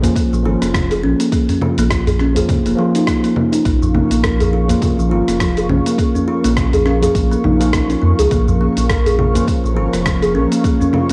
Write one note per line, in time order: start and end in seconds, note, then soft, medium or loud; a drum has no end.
0.02 0.41 F3 medium
0.02 0.42 A#3 medium
0.02 0.15 A#3 medium
0.02 0.42 C#4 medium
0.02 0.42 F4 loud
0.02 open hi-hat soft
0.02 udu medium
0.02 cabasa medium
0.16 0.31 A#3 medium
0.16 kick loud
0.16 open hi-hat medium
0.16 cabasa medium
0.33 0.47 A#1 medium
0.33 0.44 F3 medium
0.33 cabasa soft
0.43 0.56 G#1 loud
0.43 2.31 F3 medium
0.43 2.32 A#3 medium
0.43 2.33 C#4 medium
0.43 0.60 F4 loud
0.47 2.33 F4 medium
0.62 1.05 F1 medium
0.62 0.74 A#3 medium
0.62 cross-stick soft
0.62 open hi-hat soft
0.62 cabasa medium
0.74 0.90 F4 medium
0.74 kick medium
0.74 cross-stick loud
0.74 open hi-hat medium
0.74 low conga medium
0.74 cabasa medium
0.91 1.03 G#4 medium
0.91 open hi-hat soft
0.91 cabasa soft
1.03 1.14 A#1 medium
1.03 1.19 C#4 loud
1.20 1.27 A#3 medium
1.20 open hi-hat soft
1.20 cabasa medium
1.32 1.48 A#3 medium
1.32 kick loud
1.32 open hi-hat medium
1.32 cabasa medium
1.49 1.61 C#4 medium
1.49 open hi-hat soft
1.49 udu medium
1.49 cabasa soft
1.62 1.77 F4 loud
1.62 low conga medium
1.78 2.42 A#1 loud
1.78 1.90 A#3 loud
1.78 open hi-hat soft
1.78 cabasa medium
1.90 2.07 F4 medium
1.90 kick loud
1.90 cross-stick loud
1.90 open hi-hat medium
1.90 cabasa medium
2.06 2.19 G#4 medium
2.06 open hi-hat soft
2.06 udu medium
2.06 cabasa soft
2.19 2.36 C#4 loud
2.19 cross-stick soft
2.35 2.74 F3 medium
2.35 2.75 A#3 medium
2.35 2.75 C#4 medium
2.35 2.76 F4 medium
2.35 2.48 G#4 medium
2.35 open hi-hat soft
2.35 udu medium
2.35 cabasa medium
2.49 2.64 A#3 medium
2.49 kick loud
2.49 open hi-hat medium
2.49 low conga medium
2.49 cabasa medium
2.66 2.74 F1 medium
2.66 2.78 A#3 loud
2.66 open hi-hat soft
2.66 cabasa soft
2.75 4.64 F3 medium
2.75 2.93 F3 loud
2.75 4.65 A#3 medium
2.75 4.65 C#4 medium
2.79 4.66 F4 loud
2.95 3.02 D#4 medium
2.95 open hi-hat soft
2.95 cabasa medium
3.07 3.23 A#3 medium
3.07 kick medium
3.07 cross-stick loud
3.07 open hi-hat medium
3.07 cabasa medium
3.24 3.35 A#3 medium
3.24 open hi-hat soft
3.24 cabasa soft
3.36 3.52 A#3 medium
3.36 low conga medium
3.52 3.60 D#4 medium
3.52 open hi-hat soft
3.52 cabasa medium
3.65 4.02 A#1 loud
3.65 3.80 A#3 loud
3.65 11.13 C#4 medium
3.65 11.13 A#4 medium
3.65 11.13 F5 medium
3.65 11.13 C#6 medium
3.65 kick loud
3.65 open hi-hat medium
3.65 cabasa medium
3.82 3.93 F3 medium
3.82 udu medium
3.82 cabasa soft
3.95 4.10 A#3 medium
3.95 low conga medium
4.11 4.75 A#1 loud
4.11 4.23 A#3 medium
4.11 open hi-hat soft
4.11 cabasa medium
4.24 4.39 A#4 medium
4.24 kick loud
4.24 cross-stick loud
4.24 open hi-hat medium
4.24 cabasa medium
4.40 4.52 G#4 medium
4.40 open hi-hat soft
4.40 udu loud
4.40 cabasa soft
4.53 4.69 F4 medium
4.68 5.07 F3 medium
4.68 5.08 A#3 medium
4.68 4.81 A#3 medium
4.68 5.08 C#4 medium
4.68 5.08 F4 loud
4.68 open hi-hat soft
4.68 udu loud
4.68 cabasa medium
4.82 4.97 A#3 medium
4.82 kick loud
4.82 open hi-hat medium
4.82 low conga medium
4.82 cabasa medium
4.99 5.12 A#1 medium
4.99 5.10 F3 medium
4.99 cabasa soft
5.09 5.22 G#1 loud
5.09 6.97 F3 medium
5.09 6.98 A#3 medium
5.09 6.99 C#4 medium
5.09 5.26 F4 loud
5.09 6.99 F4 medium
5.28 5.71 F1 medium
5.28 5.40 A#3 medium
5.28 cross-stick soft
5.28 open hi-hat soft
5.28 cabasa medium
5.40 5.55 F3 medium
5.40 kick loud
5.40 cross-stick loud
5.40 open hi-hat medium
5.40 cabasa medium
5.57 5.69 G#4 medium
5.57 open hi-hat soft
5.57 cabasa soft
5.69 5.80 A#1 medium
5.69 5.85 C#4 loud
5.69 low conga medium
5.86 5.93 A#3 medium
5.86 open hi-hat soft
5.86 cabasa medium
5.98 6.13 A#3 medium
5.98 kick loud
5.98 open hi-hat medium
5.98 cabasa medium
6.15 6.27 C#4 medium
6.15 udu loud
6.15 cabasa soft
6.28 6.43 F4 medium
6.44 7.08 A#1 loud
6.44 6.56 A#3 loud
6.44 open hi-hat soft
6.44 cabasa medium
6.57 6.73 F4 medium
6.57 kick loud
6.57 cross-stick loud
6.57 open hi-hat medium
6.57 low conga medium
6.57 cabasa medium
6.73 6.85 G#4 medium
6.73 open hi-hat soft
6.73 udu loud
6.73 cabasa soft
6.86 7.01 C#4 loud
6.86 cross-stick soft
7.02 7.57 F3 medium
7.02 7.57 A#3 medium
7.02 7.58 C#4 medium
7.02 7.58 F4 medium
7.02 7.14 G#4 medium
7.02 open hi-hat soft
7.02 udu medium
7.02 cabasa medium
7.15 7.35 A#1 medium
7.15 7.30 A#3 medium
7.15 kick loud
7.15 open hi-hat medium
7.15 cabasa medium
7.32 7.43 A#3 loud
7.32 cabasa soft
7.44 7.95 A#1 medium
7.44 7.60 D#4 medium
7.44 low conga medium
7.59 7.72 F3 loud
7.59 7.72 A#3 medium
7.59 7.73 A#3 medium
7.59 7.72 C#4 medium
7.59 7.73 F4 loud
7.59 open hi-hat soft
7.59 cabasa medium
7.73 7.88 A#4 medium
7.73 kick loud
7.73 cross-stick loud
7.73 open hi-hat medium
7.73 cabasa medium
7.88 9.31 F3 medium
7.88 9.31 A#3 medium
7.88 8.01 C#4 medium
7.88 9.32 C#4 medium
7.88 open hi-hat soft
7.88 cabasa soft
7.92 9.33 F4 medium
8.02 8.13 F2 loud
8.02 8.11 A#3 medium
8.19 8.27 C#2 loud
8.19 8.30 G#4 medium
8.19 open hi-hat soft
8.19 cabasa medium
8.31 8.68 A#1 loud
8.31 8.46 A#3 loud
8.31 kick loud
8.31 open hi-hat soft
8.31 low conga medium
8.31 cabasa medium
8.48 8.59 F3 medium
8.48 udu loud
8.48 cabasa soft
8.61 8.76 A#3 medium
8.77 9.41 A#1 loud
8.77 8.89 A#3 medium
8.77 open hi-hat soft
8.77 cabasa medium
8.89 9.05 A#4 loud
8.89 kick loud
8.89 cross-stick loud
8.89 open hi-hat medium
8.89 cabasa medium
9.05 9.18 G#4 medium
9.05 open hi-hat soft
9.05 udu medium
9.05 cabasa soft
9.19 9.35 F4 medium
9.19 low conga medium
9.34 9.73 F3 loud
9.34 9.74 A#3 medium
9.34 9.46 A#3 medium
9.34 9.74 C#4 medium
9.34 9.74 F4 loud
9.34 open hi-hat soft
9.34 udu loud
9.34 cabasa medium
9.47 9.62 A#3 medium
9.47 kick loud
9.47 open hi-hat medium
9.47 cabasa medium
9.64 9.78 A#1 medium
9.64 9.75 F3 medium
9.64 cabasa soft
9.74 9.88 G#1 loud
9.74 11.13 F3 medium
9.74 11.13 A#3 medium
9.74 11.13 C#4 medium
9.74 9.92 F4 loud
9.78 11.13 F4 medium
9.93 10.37 F1 medium
9.93 10.05 A#3 medium
9.93 cross-stick soft
9.93 open hi-hat soft
9.93 cabasa medium
10.06 10.21 F3 medium
10.06 kick loud
10.06 cross-stick loud
10.06 open hi-hat medium
10.06 low conga medium
10.06 cabasa medium
10.22 10.34 G#4 medium
10.22 open hi-hat soft
10.22 cabasa soft
10.35 10.46 A#1 medium
10.35 10.51 C#4 loud
10.52 10.59 A#3 medium
10.52 open hi-hat soft
10.52 cabasa medium
10.64 10.79 A#3 medium
10.64 kick loud
10.64 open hi-hat soft
10.64 cabasa medium
10.81 10.93 C#4 medium
10.81 udu loud
10.81 cabasa soft
10.93 11.08 F4 loud
10.93 low conga medium
11.09 open hi-hat soft